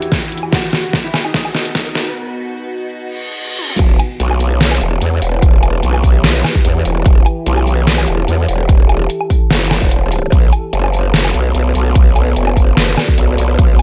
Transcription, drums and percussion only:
0.02 closed hi-hat medium
0.12 kick medium
0.12 snare medium
0.12 closed hi-hat medium
0.23 closed hi-hat soft
0.32 closed hi-hat soft
0.38 closed hi-hat medium
0.43 low woodblock soft
0.53 kick loud
0.53 snare medium
0.53 closed hi-hat medium
0.73 snare medium
0.73 closed hi-hat medium
0.84 closed hi-hat soft
0.93 kick loud
0.93 snare medium
1.14 snare medium
1.14 closed hi-hat medium
1.14 low woodblock medium
1.25 low woodblock soft
1.34 kick loud
1.34 snare medium
1.34 closed hi-hat medium
1.45 low woodblock medium
1.55 snare medium
1.55 closed hi-hat medium
1.65 closed hi-hat medium
1.75 kick loud
1.75 snare medium
1.75 closed hi-hat medium
1.86 closed hi-hat soft
1.95 snare medium
1.95 closed hi-hat soft
2.01 closed hi-hat medium
3.59 high tom medium
3.70 mid tom medium
3.79 kick loud
3.79 closed hi-hat medium
3.79 crash loud
3.99 closed hi-hat medium
3.99 low woodblock medium
4.20 closed hi-hat medium
4.31 low woodblock medium
4.40 open hi-hat medium
4.61 snare loud
4.61 closed hi-hat medium
4.72 low woodblock medium
4.81 closed hi-hat medium
5.01 closed hi-hat medium
5.22 open hi-hat medium
5.42 kick loud
5.42 closed hi-hat medium
5.63 closed hi-hat medium
5.63 low woodblock medium
5.83 closed hi-hat medium
5.94 low woodblock medium
6.04 kick medium
6.04 open hi-hat medium
6.24 snare loud
6.24 closed hi-hat medium
6.44 snare medium
6.44 closed hi-hat medium
6.44 low woodblock medium
6.55 kick medium
6.65 closed hi-hat medium
6.85 open hi-hat medium
7.06 kick loud
7.06 closed hi-hat medium
7.26 closed hi-hat medium
7.26 low woodblock medium
7.46 closed hi-hat medium
7.57 low woodblock medium
7.67 open hi-hat medium
7.87 snare loud
7.87 closed hi-hat medium
7.98 low woodblock medium
8.08 closed hi-hat medium
8.28 closed hi-hat medium
8.48 open hi-hat medium
8.69 kick loud
8.69 closed hi-hat medium
8.89 closed hi-hat medium
8.89 low woodblock medium
9.10 closed hi-hat medium
9.21 low woodblock medium
9.30 kick medium
9.30 open hi-hat medium
9.51 snare loud
9.51 closed hi-hat medium
9.71 snare medium
9.71 closed hi-hat medium
9.71 low woodblock medium
9.82 kick medium
9.91 closed hi-hat medium
10.12 open hi-hat medium
10.32 kick loud
10.32 closed hi-hat medium
10.53 closed hi-hat medium
10.53 low woodblock medium
10.73 closed hi-hat medium
10.84 low woodblock medium
10.93 open hi-hat medium
11.14 snare loud
11.14 closed hi-hat medium
11.25 low woodblock medium
11.34 closed hi-hat medium
11.55 closed hi-hat medium
11.75 open hi-hat medium
11.95 kick loud
11.95 closed hi-hat medium
12.16 closed hi-hat medium
12.16 low woodblock medium
12.36 closed hi-hat medium
12.47 low woodblock medium
12.57 kick medium
12.57 open hi-hat medium
12.77 snare loud
12.77 closed hi-hat medium
12.97 snare medium
12.97 closed hi-hat medium
12.97 low woodblock medium
13.08 kick medium
13.18 closed hi-hat medium
13.38 open hi-hat medium
13.59 kick loud
13.59 closed hi-hat medium
13.79 closed hi-hat medium
13.79 low woodblock medium

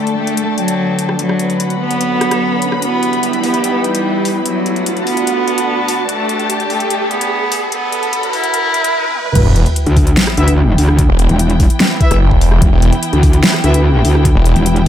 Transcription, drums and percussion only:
0.07 closed hi-hat soft
0.27 closed hi-hat medium
0.37 closed hi-hat medium
0.58 closed hi-hat medium
0.68 closed hi-hat medium
0.99 closed hi-hat medium
1.09 cross-stick soft
1.19 closed hi-hat medium
1.29 cross-stick soft
1.39 closed hi-hat soft
1.50 closed hi-hat soft
1.60 closed hi-hat medium
1.70 closed hi-hat soft
1.91 closed hi-hat soft
2.01 closed hi-hat medium
2.21 cross-stick medium
2.21 closed hi-hat medium
2.31 cross-stick medium
2.31 closed hi-hat medium
2.62 closed hi-hat medium
2.72 cross-stick soft
2.82 closed hi-hat medium
3.03 closed hi-hat soft
3.13 closed hi-hat soft
3.23 closed hi-hat medium
3.33 closed hi-hat soft
3.44 open hi-hat medium
3.54 closed hi-hat soft
3.64 closed hi-hat medium
3.84 closed hi-hat soft
3.95 closed hi-hat medium
4.25 open hi-hat medium
4.46 closed hi-hat medium
4.66 closed hi-hat soft
4.76 closed hi-hat soft
4.86 closed hi-hat medium
4.97 closed hi-hat soft
5.07 open hi-hat medium
5.17 closed hi-hat soft
5.27 closed hi-hat medium
5.48 closed hi-hat medium
5.58 closed hi-hat medium
5.88 open hi-hat medium
6.09 closed hi-hat medium
6.29 closed hi-hat medium
6.40 closed hi-hat soft
6.50 closed hi-hat medium
6.60 closed hi-hat soft
6.70 open hi-hat medium
6.80 closed hi-hat medium
6.90 closed hi-hat medium
7.11 closed hi-hat medium
7.21 closed hi-hat medium
7.52 open hi-hat loud
7.72 closed hi-hat medium
7.92 closed hi-hat medium
8.03 closed hi-hat soft
8.13 closed hi-hat medium
8.23 closed hi-hat soft
8.33 open hi-hat medium
8.44 closed hi-hat medium
8.54 closed hi-hat medium
8.74 closed hi-hat medium
8.84 closed hi-hat medium
9.05 high tom medium
9.15 mid tom medium
9.25 mid tom medium
9.35 kick loud
9.35 closed hi-hat medium
9.35 crash loud
9.56 closed hi-hat medium
9.66 closed hi-hat soft
9.76 closed hi-hat medium
9.86 closed hi-hat soft
9.97 kick loud
9.97 open hi-hat medium
10.07 closed hi-hat medium
10.17 snare loud
10.17 closed hi-hat medium
10.27 cross-stick medium
10.37 closed hi-hat medium
10.48 closed hi-hat medium
10.78 open hi-hat loud
10.89 cross-stick medium
10.99 kick loud
10.99 closed hi-hat medium
11.19 closed hi-hat medium
11.29 closed hi-hat soft
11.39 closed hi-hat medium
11.50 closed hi-hat soft
11.60 kick loud
11.60 open hi-hat medium
11.70 closed hi-hat medium
11.80 snare loud
11.80 closed hi-hat medium
12.01 kick loud
12.01 closed hi-hat medium
12.11 cross-stick medium
12.11 closed hi-hat medium
12.31 kick medium
12.41 open hi-hat loud
12.52 cross-stick soft
12.62 kick loud
12.62 closed hi-hat medium
12.82 closed hi-hat medium
12.93 closed hi-hat soft
13.03 closed hi-hat medium
13.13 closed hi-hat soft
13.23 kick loud
13.23 open hi-hat medium
13.33 closed hi-hat medium
13.43 snare loud
13.43 closed hi-hat medium
13.54 cross-stick medium
13.64 closed hi-hat medium
13.74 closed hi-hat medium
14.05 open hi-hat loud
14.15 cross-stick medium
14.25 kick loud
14.25 closed hi-hat medium
14.46 closed hi-hat medium
14.56 closed hi-hat soft
14.66 closed hi-hat medium
14.76 closed hi-hat soft

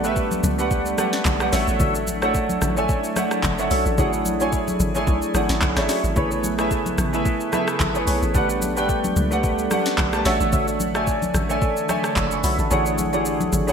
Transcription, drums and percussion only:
0.04 shaker medium
0.16 kick medium
0.16 shaker medium
0.31 high conga medium
0.31 shaker medium
0.43 high conga medium
0.43 low conga medium
0.43 shaker loud
0.59 shaker medium
0.71 kick loud
0.71 shaker medium
0.86 shaker medium
0.98 cross-stick medium
0.98 high conga medium
0.98 shaker medium
1.13 snare medium
1.13 shaker medium
1.25 kick medium
1.25 clap loud
1.25 high conga medium
1.25 low conga medium
1.25 shaker medium
1.40 cross-stick loud
1.40 shaker medium
1.53 snare medium
1.53 open hi-hat medium
1.53 shaker medium
1.68 shaker soft
1.80 kick loud
1.80 low conga medium
1.80 shaker medium
1.95 shaker medium
2.07 high conga medium
2.07 shaker loud
2.22 cross-stick medium
2.22 shaker medium
2.35 kick medium
2.35 shaker medium
2.49 high conga medium
2.49 shaker medium
2.62 cross-stick medium
2.62 high conga medium
2.62 low conga medium
2.62 shaker loud
2.77 shaker medium
2.89 kick loud
2.89 shaker medium
3.04 shaker soft
3.16 cross-stick medium
3.16 high conga medium
3.16 shaker medium
3.31 cross-stick medium
3.31 shaker medium
3.43 kick medium
3.43 clap loud
3.43 high conga medium
3.43 low conga medium
3.43 shaker medium
3.58 shaker medium
3.71 open hi-hat medium
3.71 shaker loud
3.86 shaker medium
3.98 kick loud
3.98 low conga medium
3.98 shaker medium
4.13 shaker medium
4.26 high conga medium
4.26 shaker medium
4.40 shaker medium
4.53 kick medium
4.53 shaker medium
4.68 high conga medium
4.68 shaker medium
4.80 high conga medium
4.80 low conga medium
4.80 shaker medium
4.95 shaker soft
5.07 kick loud
5.07 shaker medium
5.22 shaker medium
5.35 cross-stick medium
5.35 high conga medium
5.35 shaker medium
5.49 snare medium
5.49 shaker medium
5.62 kick medium
5.62 clap loud
5.62 high conga medium
5.62 low conga medium
5.62 shaker medium
5.77 cross-stick loud
5.77 snare medium
5.77 high conga soft
5.77 shaker medium
5.89 snare medium
5.89 open hi-hat medium
5.89 shaker medium
6.04 shaker soft
6.16 kick loud
6.16 low conga medium
6.16 shaker medium
6.31 shaker medium
6.44 high conga medium
6.44 shaker loud
6.59 cross-stick loud
6.59 shaker medium
6.71 kick medium
6.71 shaker medium
6.86 high conga medium
6.86 shaker medium
6.98 cross-stick medium
6.98 high conga medium
6.98 low conga medium
6.98 shaker loud
7.13 shaker medium
7.26 kick loud
7.26 shaker medium
7.40 shaker medium
7.53 cross-stick medium
7.53 high conga medium
7.53 shaker medium
7.68 cross-stick loud
7.68 shaker medium
7.80 kick loud
7.80 clap loud
7.80 high conga medium
7.80 low conga medium
7.80 shaker medium
7.95 shaker medium
8.07 open hi-hat medium
8.07 shaker loud
8.22 shaker soft
8.35 kick loud
8.35 low conga medium
8.35 shaker medium
8.50 shaker medium
8.62 high conga medium
8.62 shaker loud
8.77 shaker medium
8.89 kick medium
8.89 shaker medium
9.04 high conga medium
9.04 shaker medium
9.16 high conga medium
9.16 low conga medium
9.16 shaker loud
9.32 shaker medium
9.44 kick loud
9.44 shaker medium
9.59 shaker medium
9.71 cross-stick medium
9.71 high conga medium
9.71 shaker medium
9.86 snare medium
9.86 shaker medium
9.98 kick medium
9.98 clap loud
9.98 high conga medium
9.98 low conga medium
9.98 shaker medium
10.13 cross-stick loud
10.13 shaker medium
10.25 snare medium
10.25 open hi-hat medium
10.25 shaker medium
10.41 shaker medium
10.53 kick loud
10.53 low conga medium
10.53 shaker medium
10.68 shaker medium
10.80 high conga medium
10.80 shaker medium
10.95 cross-stick loud
10.95 shaker medium
11.07 kick medium
11.07 shaker medium
11.22 high conga medium
11.22 shaker medium
11.34 cross-stick medium
11.34 high conga medium
11.34 low conga medium
11.34 shaker loud
11.50 shaker soft
11.62 kick loud
11.62 shaker medium
11.77 shaker medium
11.89 cross-stick medium
11.89 high conga medium
11.89 shaker medium
12.04 cross-stick loud
12.04 shaker medium
12.16 kick medium
12.16 clap loud
12.16 high conga medium
12.16 low conga medium
12.16 shaker medium
12.31 shaker medium
12.44 open hi-hat medium
12.44 shaker medium
12.59 shaker soft
12.71 low conga medium
12.71 shaker medium
12.86 shaker medium
12.98 high conga medium
12.98 shaker medium
13.13 shaker medium
13.25 shaker medium
13.41 high conga medium
13.41 shaker medium
13.53 high conga medium
13.53 low conga medium
13.53 shaker loud
13.68 shaker medium

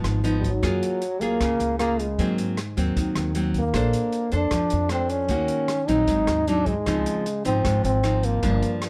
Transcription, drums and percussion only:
0.04 cross-stick medium
0.04 closed hi-hat soft
0.25 closed hi-hat soft
0.44 kick soft
0.44 closed hi-hat soft
0.63 kick soft
0.63 cross-stick medium
0.63 closed hi-hat soft
0.83 closed hi-hat soft
1.02 closed hi-hat soft
1.21 closed hi-hat soft
1.41 kick soft
1.41 cross-stick medium
1.41 closed hi-hat medium
1.60 closed hi-hat soft
1.79 cross-stick soft
1.79 closed hi-hat soft
1.99 closed hi-hat soft
2.19 kick medium
2.19 closed hi-hat soft
2.38 closed hi-hat soft
2.57 cross-stick medium
2.57 closed hi-hat soft
2.77 closed hi-hat soft
2.97 kick medium
2.97 closed hi-hat medium
3.15 cross-stick medium
3.15 closed hi-hat soft
3.35 closed hi-hat soft
3.54 kick soft
3.54 closed hi-hat soft
3.74 kick medium
3.74 cross-stick medium
3.74 closed hi-hat medium
3.93 closed hi-hat soft
4.12 closed hi-hat soft
4.32 closed hi-hat soft
4.51 kick medium
4.51 cross-stick medium
4.51 closed hi-hat medium
4.70 closed hi-hat soft
4.89 cross-stick medium
4.89 closed hi-hat soft
5.09 closed hi-hat soft
5.29 kick soft
5.29 closed hi-hat soft
5.48 closed hi-hat soft
5.68 cross-stick medium
5.68 closed hi-hat soft
5.88 closed hi-hat soft
6.08 kick medium
6.08 closed hi-hat soft
6.27 cross-stick medium
6.27 closed hi-hat soft
6.48 closed hi-hat soft
6.66 kick soft
6.66 closed hi-hat soft
6.86 kick medium
6.86 cross-stick medium
6.86 closed hi-hat medium
7.06 closed hi-hat soft
7.26 closed hi-hat soft
7.45 closed hi-hat soft
7.64 kick medium
7.64 cross-stick medium
7.64 closed hi-hat medium
7.85 closed hi-hat soft
8.04 cross-stick medium
8.04 closed hi-hat soft
8.23 closed hi-hat soft
8.43 kick soft
8.43 closed hi-hat medium
8.62 closed hi-hat soft
8.82 cross-stick medium
8.82 closed hi-hat soft

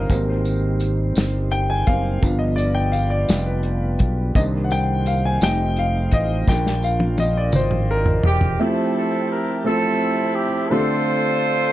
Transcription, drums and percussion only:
0.10 kick medium
0.10 closed hi-hat medium
0.10 tambourine soft
0.45 closed hi-hat soft
0.45 tambourine soft
0.80 closed hi-hat medium
0.80 tambourine soft
1.15 snare medium
1.15 closed hi-hat medium
1.15 tambourine medium
1.51 closed hi-hat soft
1.87 kick medium
1.87 closed hi-hat medium
2.23 kick medium
2.23 closed hi-hat medium
2.23 tambourine medium
2.58 closed hi-hat soft
2.58 tambourine soft
2.93 closed hi-hat medium
2.93 tambourine soft
3.28 snare loud
3.28 closed hi-hat medium
3.28 tambourine medium
3.63 closed hi-hat medium
3.99 kick medium
3.99 closed hi-hat medium
4.35 kick medium
4.35 closed hi-hat medium
4.35 tambourine medium
4.71 closed hi-hat soft
4.71 tambourine soft
5.06 closed hi-hat medium
5.06 tambourine soft
5.41 snare loud
5.41 closed hi-hat medium
5.41 tambourine medium
5.76 closed hi-hat soft
6.11 kick medium
6.11 closed hi-hat medium
6.47 kick medium
6.47 snare soft
6.47 tambourine medium
6.67 snare medium
6.82 tambourine soft
7.00 high tom medium
7.18 high tom medium
7.18 tambourine medium
7.52 mid tom medium
7.52 tambourine medium
7.71 mid tom medium
8.06 floor tom medium
8.23 floor tom medium
8.41 floor tom medium

